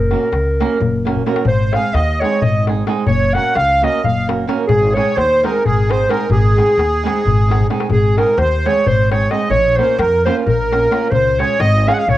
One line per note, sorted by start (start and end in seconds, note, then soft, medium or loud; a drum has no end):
0.00 0.13 F#1 medium
0.00 1.22 A#4 medium
0.11 0.28 A#3 medium
0.11 0.28 C#4 soft
0.11 0.28 F#4 soft
0.11 0.29 A#4 medium
0.11 darbuka tek medium
0.23 darbuka tek soft
0.32 0.61 C#2 medium
0.32 darbuka tek medium
0.47 darbuka tek soft
0.60 0.77 A#3 medium
0.60 0.77 C#4 medium
0.60 0.77 F#4 medium
0.60 0.77 A#4 medium
0.60 darbuka tek medium
0.80 1.19 F#1 medium
0.80 darbuka dum medium
0.95 darbuka tek soft
1.05 1.21 A#3 medium
1.05 1.21 C#4 medium
1.05 1.22 F#4 soft
1.05 1.22 A#4 medium
1.05 darbuka tek medium
1.16 darbuka dum soft
1.26 1.41 A#3 medium
1.26 1.42 C#4 medium
1.26 1.42 F#4 medium
1.26 1.42 A#4 medium
1.26 darbuka tek medium
1.36 darbuka tek medium
1.45 1.74 G#1 medium
1.45 1.72 C5 medium
1.45 1.75 C5 medium
1.45 darbuka dum medium
1.73 1.90 G#3 medium
1.73 1.90 C4 medium
1.73 1.90 D#4 soft
1.73 1.91 G#4 medium
1.73 1.95 F5 medium
1.73 1.94 F5 medium
1.73 darbuka tek medium
1.94 2.23 D#2 medium
1.94 2.22 D#5 medium
1.94 2.21 D#5 medium
1.94 darbuka tek medium
2.08 darbuka tek soft
2.20 2.39 G#3 medium
2.20 2.39 C4 medium
2.20 2.39 D#4 medium
2.20 2.41 C#5 medium
2.20 2.43 C#5 medium
2.20 darbuka tek medium
2.24 2.39 G#4 medium
2.41 2.81 G#1 medium
2.41 2.64 D#5 medium
2.41 2.65 D#5 medium
2.41 darbuka dum medium
2.67 2.83 G#3 soft
2.67 2.83 C4 soft
2.67 2.83 D#4 soft
2.67 2.84 G#4 medium
2.67 darbuka tek medium
2.87 3.03 G#3 medium
2.87 3.03 C4 medium
2.87 3.03 D#4 medium
2.87 3.04 G#4 medium
2.87 darbuka tek medium
3.06 3.36 F#1 medium
3.06 3.35 C#5 medium
3.06 3.33 C#5 medium
3.06 darbuka dum medium
3.34 3.51 A#3 medium
3.34 3.52 C#4 soft
3.34 3.52 F#4 medium
3.34 3.52 A#4 medium
3.34 3.55 F#5 loud
3.34 3.57 F#5 medium
3.34 darbuka tek medium
3.55 3.84 C#2 loud
3.55 3.85 F5 medium
3.55 3.82 F5 medium
3.55 darbuka tek medium
3.70 darbuka tek soft
3.82 3.99 A#3 medium
3.82 3.99 C#4 medium
3.82 4.00 F#4 medium
3.82 4.00 A#4 medium
3.82 4.04 D#5 medium
3.82 darbuka tek medium
3.86 4.05 D#5 medium
4.04 4.43 F#1 medium
4.04 4.27 F5 medium
4.04 4.28 F5 medium
4.04 darbuka dum medium
4.27 4.44 A#3 soft
4.27 4.44 C#4 soft
4.27 4.44 F#4 soft
4.27 4.44 A#4 medium
4.27 darbuka tek medium
4.47 4.64 A#3 medium
4.47 4.64 C#4 medium
4.47 4.64 F#4 medium
4.47 4.64 A#4 loud
4.47 darbuka tek medium
4.67 4.98 G#1 medium
4.67 4.96 G#4 medium
4.67 4.94 G#4 medium
4.67 darbuka dum loud
4.95 5.12 G#3 medium
4.95 5.13 C4 medium
4.95 5.13 D#4 medium
4.95 5.13 G#4 medium
4.95 5.18 C#5 medium
4.95 5.17 C#5 medium
4.95 darbuka tek medium
5.17 5.46 D#2 medium
5.17 5.44 C5 loud
5.17 darbuka tek medium
5.32 darbuka tek soft
5.43 5.60 G#3 medium
5.43 5.61 C4 medium
5.43 5.61 D#4 medium
5.43 5.61 G#4 medium
5.43 5.64 A#4 medium
5.43 5.68 A#4 medium
5.43 darbuka tek medium
5.66 6.05 G#1 medium
5.66 5.93 G#4 medium
5.66 5.90 G#4 medium
5.66 darbuka dum medium
5.89 6.05 G#3 medium
5.89 6.05 C4 soft
5.89 6.05 D#4 soft
5.89 6.06 G#4 medium
5.89 6.12 C5 medium
5.89 6.10 C5 medium
5.89 darbuka tek medium
6.09 6.25 G#3 medium
6.09 6.25 C4 medium
6.09 6.26 D#4 soft
6.09 6.26 G#4 medium
6.09 6.30 A#4 medium
6.09 darbuka tek medium
6.30 6.59 G#1 medium
6.30 7.67 G#4 medium
6.30 darbuka dum medium
6.44 darbuka tek soft
6.56 6.73 G#3 soft
6.56 6.73 C4 medium
6.56 6.74 D#4 soft
6.56 6.74 G#4 medium
6.56 darbuka tek soft
6.69 darbuka tek soft
6.78 7.07 D#2 medium
6.78 darbuka tek medium
6.93 darbuka tek soft
7.04 7.21 G#3 medium
7.04 7.22 C4 medium
7.04 7.22 D#4 medium
7.04 7.22 G#4 loud
7.04 darbuka tek medium
7.17 darbuka tek soft
7.25 7.64 G#1 medium
7.25 darbuka dum medium
7.39 darbuka tek soft
7.48 7.65 G#3 medium
7.48 7.66 C4 medium
7.48 7.66 D#4 medium
7.48 7.66 G#4 medium
7.48 darbuka tek medium
7.60 darbuka dum soft
7.70 7.86 G#3 medium
7.70 7.86 C4 medium
7.70 7.86 D#4 medium
7.70 7.87 G#4 medium
7.70 darbuka tek medium
7.80 darbuka tek medium
7.89 8.19 G#1 medium
7.89 8.19 G#4 medium
7.89 8.16 G#4 medium
7.89 darbuka dum medium
8.17 8.34 G#3 medium
8.17 8.34 C4 medium
8.17 8.34 D#4 soft
8.17 8.35 G#4 medium
8.17 8.39 A#4 medium
8.17 darbuka tek medium
8.37 8.67 D#2 loud
8.37 8.68 C5 medium
8.37 8.67 C5 medium
8.37 darbuka tek medium
8.65 8.82 G#3 medium
8.65 8.83 C4 medium
8.65 8.83 D#4 medium
8.65 8.83 G#4 medium
8.65 8.86 C#5 medium
8.65 8.87 C#5 medium
8.65 darbuka tek medium
8.77 darbuka tek soft
8.86 9.25 G#1 medium
8.86 9.09 C5 medium
8.86 9.10 C5 medium
8.86 darbuka dum medium
8.99 darbuka tek soft
9.11 9.27 G#3 soft
9.11 9.27 C4 soft
9.11 9.28 D#4 soft
9.11 9.28 G#4 medium
9.11 9.30 C#5 medium
9.11 9.33 C#5 medium
9.11 darbuka tek medium
9.31 9.47 G#3 medium
9.31 9.47 C4 medium
9.31 9.48 D#4 medium
9.31 9.48 G#4 medium
9.31 9.50 D#5 medium
9.31 9.51 D#5 medium
9.31 darbuka tek medium
9.50 9.79 A#1 medium
9.50 9.78 C#5 medium
9.50 9.77 C#5 medium
9.50 darbuka dum medium
9.76 9.95 A#3 medium
9.76 9.95 C#4 soft
9.76 9.95 F4 medium
9.76 9.96 A#4 medium
9.76 9.98 C5 medium
9.76 10.00 C5 medium
9.76 darbuka tek medium
9.98 10.27 F2 loud
9.98 10.24 A#4 medium
9.98 10.25 A#4 medium
9.98 darbuka tek medium
10.13 darbuka tek soft
10.25 10.42 A#3 medium
10.25 10.43 C#4 medium
10.25 10.43 F4 medium
10.25 10.43 A#4 medium
10.25 10.35 C5 loud
10.25 10.37 C5 medium
10.25 darbuka tek medium
10.38 darbuka tek soft
10.46 10.85 A#1 medium
10.46 11.12 A#4 medium
10.46 11.08 A#4 medium
10.46 darbuka dum medium
10.60 darbuka tek soft
10.71 10.87 A#3 soft
10.71 10.87 C#4 soft
10.71 10.88 F4 soft
10.71 10.88 A#4 medium
10.71 darbuka tek medium
10.91 11.07 A#3 medium
10.91 11.07 C#4 medium
10.91 11.08 F4 medium
10.91 11.08 A#4 medium
10.91 darbuka tek medium
11.11 11.40 C#2 medium
11.11 11.41 C5 medium
11.11 11.40 C5 medium
11.11 darbuka dum medium
11.38 11.55 G#3 medium
11.38 11.55 C#4 medium
11.38 11.56 F4 medium
11.38 11.56 G#4 medium
11.38 11.62 C#5 loud
11.38 11.61 C#5 medium
11.38 darbuka tek medium
11.60 11.88 G#1 loud
11.60 11.87 D#5 loud
11.60 11.90 D#5 medium
11.60 darbuka tek medium
11.74 darbuka tek soft
11.86 12.03 G#3 medium
11.86 12.03 C#4 medium
11.86 12.04 F4 medium
11.86 12.04 G#4 medium
11.86 11.95 F5 loud
11.86 11.93 F5 medium
11.86 darbuka tek medium
11.92 11.97 F#5 medium
11.92 12.00 F#5 medium
11.98 12.08 F5 medium
11.98 12.11 F5 medium
11.98 darbuka tek soft
12.07 12.18 C#2 medium
12.07 12.18 C#5 medium
12.07 darbuka dum medium